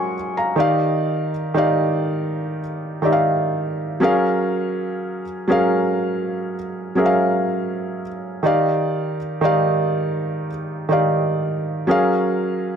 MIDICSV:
0, 0, Header, 1, 2, 480
1, 0, Start_track
1, 0, Key_signature, -3, "major"
1, 0, Tempo, 983607
1, 278, Time_signature, 4, 2, 24, 8
1, 6228, End_track
2, 0, Start_track
2, 0, Title_t, "Felt piano"
2, 0, Program_c, 0, 0
2, 0, Control_c, 0, 64, 127
2, 0, Note_on_c, 0, 54, 78
2, 0, Note_on_c, 0, 61, 71
2, 0, Note_on_c, 0, 68, 73
2, 0, Note_on_c, 0, 70, 71
2, 0, Note_on_c, 0, 75, 89
2, 0, Note_on_c, 0, 78, 56
2, 0, Note_on_c, 0, 80, 63
2, 0, Note_on_c, 0, 84, 64
2, 0, Note_on_c, 0, 85, 71
2, 70, Note_off_c, 0, 54, 0
2, 72, Note_off_c, 0, 61, 0
2, 74, Note_off_c, 0, 68, 0
2, 77, Note_off_c, 0, 70, 0
2, 79, Note_off_c, 0, 75, 0
2, 168, Note_off_c, 0, 85, 0
2, 169, Note_off_c, 0, 80, 0
2, 182, Note_on_c, 0, 82, 66
2, 185, Note_on_c, 0, 77, 57
2, 273, Note_on_c, 0, 51, 89
2, 278, Note_on_c, 0, 63, 77
2, 282, Note_on_c, 0, 67, 77
2, 285, Note_off_c, 0, 77, 0
2, 285, Control_c, 0, 64, 0
2, 286, Note_off_c, 0, 78, 0
2, 287, Note_on_c, 0, 74, 81
2, 289, Note_off_c, 0, 84, 0
2, 292, Note_on_c, 0, 77, 98
2, 370, Control_c, 0, 64, 127
2, 408, Note_off_c, 0, 82, 0
2, 631, Note_off_c, 0, 51, 0
2, 634, Note_off_c, 0, 63, 0
2, 636, Note_off_c, 0, 67, 0
2, 638, Note_off_c, 0, 74, 0
2, 641, Note_off_c, 0, 77, 0
2, 754, Note_on_c, 0, 51, 87
2, 758, Note_on_c, 0, 63, 82
2, 763, Note_on_c, 0, 67, 81
2, 767, Note_on_c, 0, 74, 79
2, 772, Note_on_c, 0, 77, 98
2, 1270, Note_off_c, 0, 51, 0
2, 1272, Note_off_c, 0, 63, 0
2, 1275, Note_off_c, 0, 67, 0
2, 1277, Note_off_c, 0, 74, 0
2, 1279, Note_off_c, 0, 77, 0
2, 1474, Note_on_c, 0, 51, 78
2, 1478, Note_on_c, 0, 63, 75
2, 1483, Note_on_c, 0, 67, 73
2, 1487, Note_on_c, 0, 74, 73
2, 1492, Note_on_c, 0, 76, 69
2, 1522, Note_off_c, 0, 76, 0
2, 1525, Note_on_c, 0, 77, 87
2, 1953, Note_on_c, 0, 54, 92
2, 1956, Note_off_c, 0, 51, 0
2, 1958, Note_off_c, 0, 63, 0
2, 1958, Note_on_c, 0, 61, 87
2, 1960, Note_off_c, 0, 67, 0
2, 1962, Note_on_c, 0, 68, 85
2, 1963, Note_off_c, 0, 74, 0
2, 1964, Control_c, 0, 64, 0
2, 1965, Note_off_c, 0, 77, 0
2, 1967, Note_on_c, 0, 70, 89
2, 1972, Note_on_c, 0, 77, 105
2, 2061, Control_c, 0, 64, 127
2, 2547, Note_off_c, 0, 54, 0
2, 2549, Note_off_c, 0, 61, 0
2, 2551, Note_off_c, 0, 68, 0
2, 2554, Note_off_c, 0, 70, 0
2, 2556, Note_off_c, 0, 77, 0
2, 2672, Note_on_c, 0, 54, 91
2, 2678, Note_on_c, 0, 61, 80
2, 2682, Note_on_c, 0, 68, 78
2, 2687, Note_on_c, 0, 70, 81
2, 2692, Note_on_c, 0, 77, 99
2, 3189, Note_off_c, 0, 54, 0
2, 3192, Note_off_c, 0, 61, 0
2, 3194, Note_off_c, 0, 68, 0
2, 3197, Note_off_c, 0, 70, 0
2, 3199, Note_off_c, 0, 77, 0
2, 3393, Note_on_c, 0, 54, 80
2, 3398, Note_on_c, 0, 61, 76
2, 3403, Note_on_c, 0, 68, 77
2, 3407, Note_on_c, 0, 70, 76
2, 3412, Note_on_c, 0, 76, 68
2, 3442, Note_off_c, 0, 76, 0
2, 3444, Note_on_c, 0, 77, 90
2, 3910, Note_off_c, 0, 54, 0
2, 3912, Note_off_c, 0, 61, 0
2, 3914, Note_off_c, 0, 68, 0
2, 3917, Note_off_c, 0, 70, 0
2, 3935, Note_off_c, 0, 77, 0
2, 4113, Note_on_c, 0, 51, 86
2, 4118, Note_on_c, 0, 63, 82
2, 4123, Note_on_c, 0, 67, 79
2, 4125, Control_c, 0, 64, 0
2, 4127, Note_on_c, 0, 74, 81
2, 4132, Note_on_c, 0, 77, 102
2, 4217, Control_c, 0, 64, 127
2, 4471, Note_off_c, 0, 51, 0
2, 4473, Note_off_c, 0, 63, 0
2, 4476, Note_off_c, 0, 67, 0
2, 4478, Note_off_c, 0, 74, 0
2, 4480, Note_off_c, 0, 77, 0
2, 4593, Note_on_c, 0, 51, 94
2, 4598, Note_on_c, 0, 63, 81
2, 4603, Note_on_c, 0, 67, 86
2, 4607, Note_on_c, 0, 74, 83
2, 4612, Note_on_c, 0, 77, 99
2, 5110, Note_off_c, 0, 51, 0
2, 5112, Note_off_c, 0, 63, 0
2, 5115, Note_off_c, 0, 67, 0
2, 5117, Note_off_c, 0, 74, 0
2, 5119, Note_off_c, 0, 77, 0
2, 5313, Note_on_c, 0, 51, 80
2, 5318, Note_on_c, 0, 63, 72
2, 5322, Note_on_c, 0, 67, 72
2, 5327, Note_on_c, 0, 74, 76
2, 5332, Note_on_c, 0, 77, 88
2, 5793, Note_on_c, 0, 54, 96
2, 5795, Note_off_c, 0, 51, 0
2, 5798, Note_off_c, 0, 63, 0
2, 5798, Note_on_c, 0, 61, 85
2, 5800, Note_off_c, 0, 67, 0
2, 5802, Note_off_c, 0, 74, 0
2, 5803, Control_c, 0, 64, 0
2, 5803, Note_on_c, 0, 68, 87
2, 5805, Note_off_c, 0, 77, 0
2, 5807, Note_on_c, 0, 70, 87
2, 5812, Note_on_c, 0, 77, 106
2, 5902, Control_c, 0, 64, 127
2, 6228, Note_off_c, 0, 54, 0
2, 6228, Note_off_c, 0, 61, 0
2, 6228, Note_off_c, 0, 68, 0
2, 6228, Note_off_c, 0, 70, 0
2, 6228, Note_off_c, 0, 77, 0
2, 6228, End_track
0, 0, End_of_file